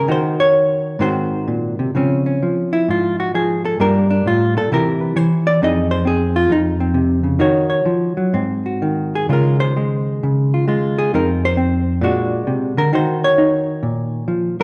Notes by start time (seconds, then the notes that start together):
0.08 D#3 D#4 F#4 C5
0.40 C#5
0.99 G#2 D#3 C4 F#4 C5
1.48 A#2
1.79 C3
1.95 C#3 F3 C4 C#4
2.26 C#4
2.43 F3
2.73 E4
2.88 G#2 F4
3.20 F#4
3.34 F3 G#4
3.65 A4
3.80 G2 G3 A#3 D4 A#4
4.11 D4
4.26 A2 F4
4.57 A#2 A4
4.72 C3 E3 E4 G4 A#4
5.02 B4
5.16 E3 C5
5.47 D5
5.62 F2 C4 D#4 G#4 D#5
5.91 C5
6.05 C4 G#4
6.36 F4
6.50 F2 D#4
6.80 C4
6.94 C3
7.23 C#3
7.39 D#3 D#4 F#4 C#5
7.70 C#5
7.86 F3
8.17 F#3
8.33 G#2 C4
8.66 F#4
8.82 D#3
9.15 G#4
9.29 C#3 G#3 F4 A#4
9.60 C5
9.77 G#3
10.23 C#3
10.54 F4
10.68 G#3 F4
10.98 G#4
11.14 F2 C4 D#4 A#4
11.45 C5
11.57 C4
12.01 A#2 G#3 D4 F#4
12.47 C3
12.77 D3 A#4
12.93 D#3 D#4 F#4 C5
13.24 C#5
13.38 D#4
13.83 A#2
14.28 F3
14.60 F#3